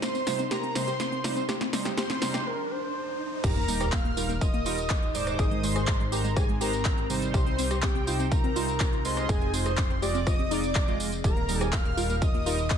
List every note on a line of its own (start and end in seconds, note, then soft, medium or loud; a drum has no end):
0.00 1.47 C3 medium
0.00 1.47 G3 medium
0.00 0.09 C4 medium
0.00 2.42 D#4 medium
0.00 1.45 C5 medium
0.00 0.53 C5 loud
0.00 0.48 C6 loud
0.00 snare medium
0.00 closed hi-hat medium
0.00 tambourine soft
0.00 riser medium
0.15 0.21 C4 medium
0.15 closed hi-hat soft
0.15 tambourine soft
0.27 0.43 C3 medium
0.27 0.43 G3 medium
0.27 0.43 D#4 medium
0.27 0.33 F4 medium
0.27 0.43 C5 medium
0.27 snare medium
0.27 open hi-hat medium
0.27 tambourine medium
0.39 0.46 C4 medium
0.39 closed hi-hat medium
0.39 tambourine soft
0.51 0.58 G4 medium
0.51 0.75 A#4 loud
0.51 0.74 A#5 loud
0.51 snare medium
0.51 closed hi-hat soft
0.51 tambourine soft
0.63 0.70 C4 medium
0.63 closed hi-hat soft
0.75 0.92 C3 medium
0.75 0.92 G3 medium
0.75 0.82 C4 medium
0.75 0.92 D#4 medium
0.75 0.92 C5 medium
0.75 1.45 C5 loud
0.75 1.45 C6 loud
0.75 snare medium
0.75 open hi-hat loud
0.75 tambourine medium
0.88 0.94 G4 medium
0.88 closed hi-hat medium
0.88 tambourine soft
1.00 1.07 C4 medium
1.00 snare medium
1.00 closed hi-hat soft
1.00 tambourine soft
1.12 1.19 C4 medium
1.12 closed hi-hat soft
1.24 1.41 C3 medium
1.24 1.41 G3 medium
1.24 1.41 D#4 medium
1.24 1.31 F4 medium
1.24 1.41 C5 medium
1.24 snare medium
1.24 open hi-hat loud
1.24 tambourine medium
1.36 1.43 C4 medium
1.36 closed hi-hat medium
1.36 tambourine soft
1.48 2.45 F2 medium
1.48 2.45 F3 medium
1.48 1.55 G4 loud
1.48 2.45 G#4 medium
1.48 snare medium
1.48 closed hi-hat soft
1.48 tambourine soft
1.61 1.68 C4 medium
1.61 snare medium
1.61 closed hi-hat soft
1.73 1.90 C3 medium
1.73 1.90 G3 medium
1.73 1.80 C4 medium
1.73 1.90 D#4 medium
1.73 1.90 C5 medium
1.73 snare medium
1.73 open hi-hat loud
1.73 tambourine medium
1.85 1.92 G4 medium
1.85 snare medium
1.85 closed hi-hat medium
1.85 tambourine soft
1.97 2.04 G4 medium
1.97 2.48 C5 loud
1.97 2.43 C6 loud
1.97 snare loud
1.97 closed hi-hat medium
1.97 tambourine soft
2.10 2.16 C4 medium
2.10 snare medium
2.10 closed hi-hat soft
2.10 tambourine soft
2.22 2.38 C3 medium
2.22 2.38 G3 medium
2.22 2.28 C4 medium
2.22 2.38 D#4 medium
2.22 2.38 C5 medium
2.22 snare loud
2.22 open hi-hat medium
2.22 tambourine medium
2.34 2.41 G4 medium
2.34 snare medium
2.34 closed hi-hat medium
2.34 tambourine soft
2.46 2.72 A#4 loud
2.71 3.43 C5 loud
3.44 5.36 D#1 medium
3.44 5.37 D#3 medium
3.44 5.37 D#4 medium
3.44 3.50 G4 loud
3.44 5.37 G4 medium
3.44 3.94 A#4 loud
3.44 5.37 A#4 medium
3.44 3.89 A#5 loud
3.44 kick loud
3.44 closed hi-hat medium
3.44 tambourine soft
3.44 crash loud
3.44 sub drop medium
3.56 3.63 A#3 medium
3.56 closed hi-hat soft
3.68 3.85 G3 medium
3.68 3.75 A#3 medium
3.68 3.85 D#4 medium
3.68 3.85 A#4 medium
3.68 open hi-hat loud
3.68 tambourine medium
3.81 3.87 G4 medium
3.81 cross-stick medium
3.81 closed hi-hat medium
3.81 tambourine soft
3.92 3.99 A#3 medium
3.92 4.41 F5 loud
3.92 4.38 F6 loud
3.92 kick loud
3.92 clap loud
3.92 closed hi-hat medium
3.92 tambourine soft
4.05 4.11 A#3 medium
4.05 closed hi-hat soft
4.17 4.34 G3 medium
4.17 4.34 D#4 medium
4.17 4.24 F4 medium
4.17 4.34 A#4 medium
4.17 open hi-hat medium
4.17 tambourine medium
4.29 4.36 A#3 medium
4.29 closed hi-hat medium
4.29 tambourine soft
4.41 4.48 F4 medium
4.41 5.16 D#5 loud
4.41 5.11 D#6 loud
4.41 kick loud
4.41 closed hi-hat medium
4.41 tambourine soft
4.54 4.60 A#3 medium
4.54 closed hi-hat soft
4.66 4.76 G3 loud
4.66 4.76 D#4 medium
4.66 5.29 F4 loud
4.66 4.76 A#4 loud
4.66 open hi-hat loud
4.66 tambourine medium
4.78 closed hi-hat medium
4.78 tambourine soft
4.90 kick loud
4.90 clap loud
4.90 closed hi-hat soft
4.90 tambourine soft
5.03 closed hi-hat soft
5.15 5.60 G#2 medium
5.15 5.60 G#3 medium
5.15 5.60 D#4 medium
5.15 5.60 C5 loud
5.15 5.41 D5 loud
5.15 5.37 D6 medium
5.15 open hi-hat medium
5.15 tambourine medium
5.27 cross-stick medium
5.27 closed hi-hat medium
5.27 tambourine soft
5.39 7.32 G#1 medium
5.39 7.32 G#3 medium
5.39 7.32 C4 medium
5.39 11.20 D#4 medium
5.39 5.46 G#4 loud
5.39 5.65 D#5 loud
5.39 5.62 D#6 loud
5.39 kick loud
5.39 closed hi-hat soft
5.39 tambourine soft
5.51 5.58 G#3 medium
5.51 closed hi-hat soft
5.63 5.80 G#2 medium
5.63 5.70 G#3 medium
5.63 5.80 G#3 medium
5.63 5.80 D#4 medium
5.63 5.80 C5 medium
5.63 6.14 C5 loud
5.63 6.09 C6 loud
5.63 open hi-hat loud
5.63 tambourine medium
5.76 5.82 G#4 medium
5.76 cross-stick medium
5.76 closed hi-hat medium
5.76 tambourine soft
5.87 5.94 G#3 medium
5.87 kick loud
5.87 clap loud
5.87 closed hi-hat medium
5.87 tambourine soft
6.00 6.07 G#3 medium
6.00 closed hi-hat soft
6.12 6.29 G#2 medium
6.12 6.29 G#3 medium
6.12 6.29 D#4 medium
6.12 6.19 G4 medium
6.12 6.36 A#4 medium
6.12 6.29 C5 medium
6.12 6.35 A#5 medium
6.12 open hi-hat medium
6.12 tambourine medium
6.24 6.31 G#3 medium
6.24 closed hi-hat medium
6.24 tambourine soft
6.37 6.43 G4 medium
6.37 6.48 G#4 medium
6.37 6.48 G#5 medium
6.37 kick loud
6.37 cross-stick medium
6.37 closed hi-hat medium
6.37 tambourine soft
6.49 6.55 G#3 medium
6.49 closed hi-hat soft
6.61 6.71 G#2 medium
6.61 6.71 G#3 medium
6.61 6.71 D#4 medium
6.61 7.24 G4 loud
6.61 7.06 A#4 medium
6.61 6.71 C5 loud
6.61 7.06 A#5 medium
6.61 open hi-hat loud
6.61 tambourine medium
6.73 closed hi-hat medium
6.73 tambourine soft
6.85 kick loud
6.85 clap loud
6.85 closed hi-hat medium
6.85 tambourine soft
6.98 closed hi-hat soft
7.10 7.56 C3 medium
7.10 7.56 G3 medium
7.10 7.56 D#4 medium
7.10 7.56 C5 loud
7.10 open hi-hat medium
7.10 tambourine medium
7.22 closed hi-hat medium
7.22 tambourine soft
7.34 9.27 C2 loud
7.34 9.27 C3 medium
7.34 11.21 C4 medium
7.34 7.41 G4 loud
7.34 9.27 G4 medium
7.34 7.80 C5 loud
7.34 7.79 C6 loud
7.34 kick loud
7.34 closed hi-hat medium
7.34 tambourine soft
7.46 7.53 C4 medium
7.46 closed hi-hat soft
7.58 7.75 C3 medium
7.58 7.75 G3 medium
7.58 7.65 C4 medium
7.58 7.75 D#4 medium
7.58 7.75 C5 medium
7.58 open hi-hat loud
7.58 tambourine medium
7.71 7.77 G4 medium
7.71 cross-stick medium
7.71 closed hi-hat soft
7.71 tambourine soft
7.83 7.90 C4 medium
7.83 8.33 G4 medium
7.83 8.28 G5 medium
7.83 kick loud
7.83 clap loud
7.83 closed hi-hat medium
7.83 tambourine soft
7.95 8.02 C4 medium
7.95 closed hi-hat soft
8.07 8.24 C3 medium
8.07 8.24 G3 medium
8.07 8.24 D#4 medium
8.07 8.14 F4 medium
8.07 8.24 C5 medium
8.07 open hi-hat medium
8.07 tambourine medium
8.20 8.26 C4 medium
8.20 closed hi-hat soft
8.20 tambourine soft
8.32 8.38 F4 medium
8.32 9.06 A#4 loud
8.32 9.01 A#5 loud
8.32 kick loud
8.32 closed hi-hat medium
8.32 tambourine soft
8.44 8.50 C4 medium
8.44 closed hi-hat soft
8.56 8.66 C3 loud
8.56 8.66 G3 medium
8.56 8.66 D#4 medium
8.56 9.19 F4 loud
8.56 8.66 C5 loud
8.56 open hi-hat loud
8.56 tambourine medium
8.68 closed hi-hat medium
8.68 tambourine soft
8.80 kick loud
8.80 clap loud
8.80 closed hi-hat soft
8.80 tambourine soft
8.93 closed hi-hat soft
9.05 9.51 G#3 medium
9.05 9.51 F4 medium
9.05 9.29 C5 medium
9.05 9.51 D#5 loud
9.05 9.27 C6 loud
9.05 open hi-hat medium
9.05 tambourine medium
9.17 cross-stick medium
9.17 closed hi-hat medium
9.17 tambourine soft
9.29 11.22 F1 medium
9.29 11.22 F3 medium
9.29 9.36 G#4 loud
9.29 11.22 G#4 medium
9.29 9.52 G#4 medium
9.29 9.52 G#5 loud
9.29 kick loud
9.29 closed hi-hat soft
9.29 tambourine soft
9.41 9.48 C4 medium
9.41 closed hi-hat soft
9.53 9.70 G#3 medium
9.53 9.60 C4 medium
9.53 9.70 F4 medium
9.53 9.99 C5 loud
9.53 9.70 D#5 medium
9.53 9.99 C6 loud
9.53 open hi-hat loud
9.53 tambourine medium
9.66 9.72 G#4 medium
9.66 cross-stick medium
9.66 closed hi-hat soft
9.66 tambourine soft
9.78 9.85 C4 medium
9.78 kick loud
9.78 clap loud
9.78 closed hi-hat medium
9.78 tambourine soft
9.90 9.97 C4 medium
9.90 closed hi-hat soft
10.02 10.19 G#3 medium
10.02 10.19 F4 medium
10.02 10.09 G4 medium
10.02 10.28 D5 loud
10.02 10.19 D#5 medium
10.02 10.25 D6 loud
10.02 open hi-hat medium
10.02 tambourine medium
10.14 10.21 C4 medium
10.14 closed hi-hat medium
10.14 tambourine soft
10.27 10.33 F4 medium
10.27 10.53 D#5 loud
10.27 10.49 D#6 loud
10.27 kick loud
10.27 cross-stick medium
10.27 closed hi-hat medium
10.27 tambourine soft
10.39 10.46 C4 medium
10.39 closed hi-hat soft
10.51 10.62 G#3 medium
10.51 11.15 D#4 loud
10.51 10.62 F4 medium
10.51 11.00 D5 loud
10.51 10.62 D#5 loud
10.51 10.96 D6 loud
10.51 open hi-hat loud
10.51 tambourine medium
10.64 closed hi-hat medium
10.64 tambourine soft
10.75 kick loud
10.75 clap loud
10.75 closed hi-hat soft
10.75 tambourine soft
10.88 10.97 G#3 loud
10.88 10.97 F4 medium
10.88 10.97 D#5 loud
10.88 closed hi-hat soft
11.00 11.10 G#3 medium
11.00 11.10 F4 medium
11.00 11.10 D#5 medium
11.00 open hi-hat medium
11.00 tambourine medium
11.12 closed hi-hat medium
11.12 tambourine soft
11.24 12.78 D#1 medium
11.24 12.78 D#3 medium
11.24 12.78 D#4 medium
11.24 11.31 G4 loud
11.24 12.78 G4 medium
11.24 12.78 A#4 medium
11.24 11.61 A#4 loud
11.24 11.70 A#5 loud
11.24 kick loud
11.24 closed hi-hat soft
11.24 tambourine soft
11.37 11.43 A#3 medium
11.37 closed hi-hat soft
11.49 11.65 G3 medium
11.49 11.55 A#3 medium
11.49 11.65 D#4 medium
11.49 11.65 A#4 medium
11.49 open hi-hat loud
11.49 tambourine medium
11.61 11.67 G4 medium
11.61 11.75 G#4 loud
11.61 cross-stick medium
11.61 closed hi-hat medium
11.61 tambourine soft
11.73 11.80 A#3 medium
11.73 12.23 F5 loud
11.73 12.18 F6 loud
11.73 kick loud
11.73 clap loud
11.73 closed hi-hat medium
11.73 tambourine soft
11.85 11.92 A#3 medium
11.85 closed hi-hat soft
11.97 12.14 G3 medium
11.97 12.14 D#4 medium
11.97 12.04 F4 medium
11.97 12.14 A#4 medium
11.97 open hi-hat loud
11.97 tambourine medium
12.10 12.16 A#3 medium
12.10 closed hi-hat medium
12.10 tambourine soft
12.22 12.29 F4 medium
12.22 12.78 D#5 loud
12.22 12.78 D#6 loud
12.22 kick loud
12.22 closed hi-hat soft
12.22 tambourine soft
12.34 12.41 A#3 medium
12.34 closed hi-hat soft
12.46 12.57 G3 medium
12.46 12.57 D#4 medium
12.46 12.78 F4 loud
12.46 12.57 A#4 loud
12.46 open hi-hat loud
12.46 tambourine medium
12.59 closed hi-hat soft
12.59 tambourine soft
12.70 kick loud
12.70 clap loud
12.70 closed hi-hat medium
12.70 tambourine soft